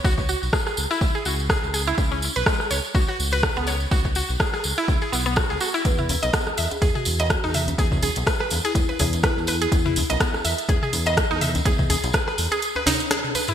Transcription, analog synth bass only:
X:1
M:4/4
L:1/16
Q:"Swing 16ths" 1/4=124
K:E
V:1 name="Analog synth bass" clef=bass
C,,2 z B,,, z2 C,, z C,, z C,,2 z C,,2 z | C,,2 z B,,, z2 C,, z C,, z C,,2 z C,,2 z | C,,2 z B,,, z2 C,, z C,, z B,,,2 z C,, z2 | E,,2 z B,,, z2 E,, z E,, z E,,2 z E,,2 z |
E,,2 z B,,, z2 E,, z E,, z E,,2 z E,,2 z | E,,2 z B,,, z2 E,, z E,, z E,,2 z E,,2 z | E,,2 z B,,, z2 E,, z8 z |]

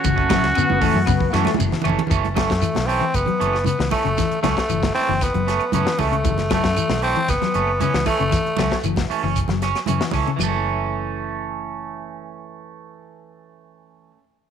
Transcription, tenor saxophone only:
X:1
M:4/4
L:1/8
Q:1/4=116
K:F#m
V:1 name="Tenor saxophone"
z8 | z A,2 ^B, =B,2 B, A,- | A, A,2 ^B, =B,2 B, A,- | A, A,2 ^B, =B,2 B, A,- |
A,2 z6 | z8 | z8 |]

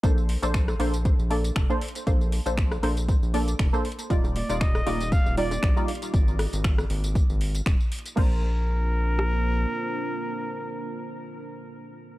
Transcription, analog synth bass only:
X:1
M:4/4
L:1/16
Q:"Swing 16ths" 1/4=118
K:Bb
V:1 name="Analog synth bass" clef=bass
B,,,3 B,,,3 B,,,3 B,,,3 F,,, z3 | B,,,3 B,,,3 B,,,3 B,,,3 F,,, z3 | E,,,3 E,,,3 E,,,3 E,,,3 B,,, z3 | _A,,,3 A,,,3 A,,,3 A,,,3 E,,, z3 |
B,,,12 z4 | z16 |]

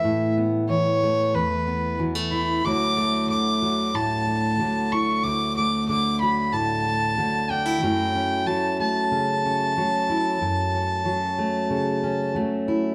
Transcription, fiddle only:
X:1
M:4/4
L:1/8
Q:1/4=93
K:D
V:1 name="Fiddle"
e z c2 B2 z b | d'2 d'2 a3 c' | d' d' d' b a3 g- | g2 a a4- a- |
a6 z2 |]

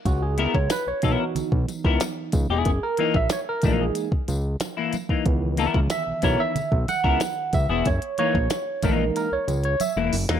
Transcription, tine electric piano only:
X:1
M:4/4
L:1/16
Q:1/4=92
K:C#dor
V:1 name="Tine electric piano"
F G2 c B c2 F2 z6 z | G A2 e c A2 G2 z6 z | z4 e2 c e3 f4 e2 | c2 c4 A2 A c2 c e2 z2 |]
V:2 name="Tine electric piano"
z6 [E,B,D]8- [E,B,D]2 | z6 [E,G,A,D]2 z8 | [D,E,B,]6 [E,B,D]2 z8 | z6 [E,G,A,D]2 z8 |]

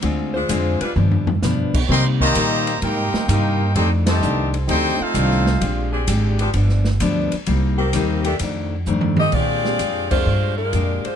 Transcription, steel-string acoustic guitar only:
X:1
M:4/4
L:1/8
Q:"Swing" 1/4=129
K:Fmix
V:1 name="Steel-string acoustic guitar" clef=bass
[D,_A,CF] z [D,A,CF] z [G,,F,=B,D] z [G,,F,B,D] z | [C,G,B,E] z [C,G,B,E] z [C,G,B,E] z [C,G,B,E] z | [F,,E,A,D] z [F,,E,A,D] z [F,,E,A,D] z [F,,E,A,D] z | [B,,_A,DG] z [B,,A,DG] z [G,,F,=B,D] z [G,,F,B,D] z |
[C,G,B,E] z [C,G,B,E] z [F,,E,A,D] z [F,,E,A,D] z | [K:Bbmix] [B,,A,DG] z [B,,A,DG] z [B,,A,DG] z [B,,A,DG] z |]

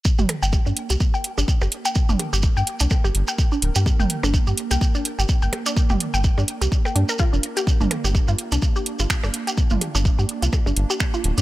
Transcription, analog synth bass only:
X:1
M:4/4
L:1/16
Q:"Swing 16ths" 1/4=126
K:Gm
V:1 name="Analog synth bass" clef=bass
z G,,, z G,,, z G,, z C,, z3 G,,, z G,,, z2 | z G,,, z G,,, z G,, z C,, z G,,, G,,, z3 D,,, G,, | z G,,, z G,,, z G,, z C,, z3 G,,, z G,,, z2 | z G,,, z G,,, z G,, z C,, z2 G,, z2 F,,, z2 |
z G,,, z G,,, z G,, z C,, z3 G,,, z G,,, z2 | z G,,, z G,,, z G,, z C,, z G,,, G,,, z3 D,,, G,, |]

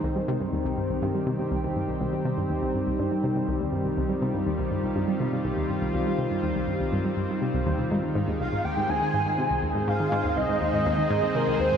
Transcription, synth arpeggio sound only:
X:1
M:4/4
L:1/16
Q:1/4=122
K:Cm
V:1 name="Synth arpeggio sound" clef=bass
C,, G, C, G,, E,, C,, G,, C,, G,, G, C, C, C,, E,, G,, C,, | C,, G, C, G,, E,, C,, G,, C,, G,, G, C, C, C,, E,, G,, C,, | C,, G, C, G,, E,, C,, G,, C,, G,, G, C, C, C,, E,, G,, C,, | C,, G, C, G,, E,, C,, G,, C,, G,, G, G,, G,, C, C,, E,, C, |
A,, E, A,, E,, C,, A,, E,, A,, E,, E, A,, A,, C, C,, E,, A,, | A,, E, A,, E,, C,, A,, E,, A,, E,, E, A,, A,, C, C,, E,, A,, |]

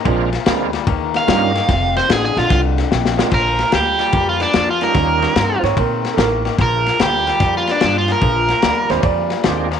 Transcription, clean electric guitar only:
X:1
M:4/4
L:1/8
Q:"Swing" 1/4=147
K:Bbmix
V:1 name="Clean electric guitar" clef=bass
[B,,F,]2 [B,,G,] [B,,G,] [E,B,]2 [E,B,] [E,B,] | [F,,C,]2 [F,,D,] [F,,D,] [F,,D,]2 [F,,C,] [F,,C,] | [B,,F,]2 [B,,G,] [B,,G,] [B,,G,]2 [B,,F,] [B,,F,] | [E,B,]2 [E,C] [E,C] [E,C]2 [E,B,] [E,B,] |
[B,,F,]2 [B,,G,] [B,,G,] [B,,G,]2 [B,,F,] [B,,F,] | [B,,F,]2 [B,,G,] [B,,G,] [B,,G,]2 [B,,F,] [B,,F,] |]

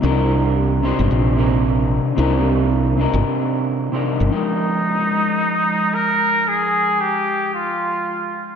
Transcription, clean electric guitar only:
X:1
M:4/4
L:1/16
Q:"Swing 16ths" 1/4=112
K:Fdor
V:1 name="Clean electric guitar"
[C,CDEB]6 [C,CDEc]4 [C,CDEB]6 | [C,CDEB]6 [C,CDEB]6- [C,CDEB] [C,CDEB]3 | [F,A,CEBg]16- | [F,A,CEBg]16 |]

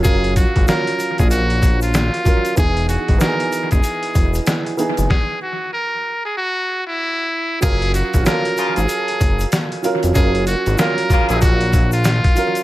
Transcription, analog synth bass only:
X:1
M:4/4
L:1/16
Q:"Swing 16ths" 1/4=95
K:F#
V:1 name="Analog synth bass" clef=bass
F,,,3 G,,, z3 A,,,6 z3 | =E,,,3 G,,, z3 F,,, z2 E,,,2 z3 F,,, | z16 | F,,,3 A,,, z3 G,,, z2 F,,,2 z3 E,,, |
F,,,3 G,,, z3 A,,,6 z3 |]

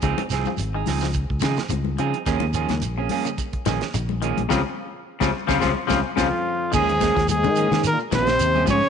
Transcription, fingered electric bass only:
X:1
M:4/4
L:1/16
Q:"Swing 16ths" 1/4=108
K:Dblyd
V:1 name="Fingered electric bass" clef=bass
D,, z C,, z A,,,2 D,,3 D,, D, z D,,2 D, z | E,, E,,2 E,, B,,,2 z4 B,,, z B,,,3 B,,, | D,, z4 D,, z D,, D,, z D,, z D,, z3 | E,,3 E,,2 E,2 E,2 z B,,,2 E,,2 A,, z |]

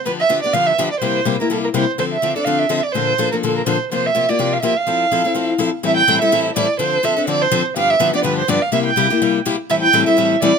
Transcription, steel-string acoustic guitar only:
X:1
M:4/4
L:1/8
Q:"Swing" 1/4=249
K:Cmix
V:1 name="Steel-string acoustic guitar"
[D,F,=B,DG] z [D,F,B,DG] [B,DG] [D,F,B,DG] z [D,F,B,DG] z | [C,G,B,EG] z [C,G,B,EG] [B,EG] [C,G,B,EG] z [C,G,B,EG] z | [D,F,CDA] z [D,F,CDA] [CDA] [D,F,CDA] z [D,F,CDA] z | [B,,D,F,B,DA] z [B,,D,F,B,DA] [F,B,DA] [B,,D,F,B,DA] z [B,,D,F,B,DA] z |
[C,F,B,FG] z [C,F,B,FG] [B,FG] [C,F,B,FG] z [C,F,B,FG] z | [F,CEA] z [F,CEA] [CEA] [F,CEA] z [F,CEA] z | [A,,E,G,CEA] z [A,,E,G,CEA] [G,CEA] [A,,E,G,CEA] z [A,,E,G,CEA] z | [D,F,CDA] z [D,F,CDA] [CDA] [D,F,CDA] z [D,F,CDA] z |
[G,,D,F,=B,DG] z [G,,D,F,B,DG] [F,B,DG] [G,,D,F,B,DG] z [G,,D,F,B,DG] z | [C,G,B,EG] z [C,G,B,EG] [B,EG] [C,G,B,EG] z [C,G,B,EG] z | [A,,E,G,CEA] z [A,,E,G,CEA] [G,CEA] [A,,E,G,CEA] z [A,,E,G,CEA] z |]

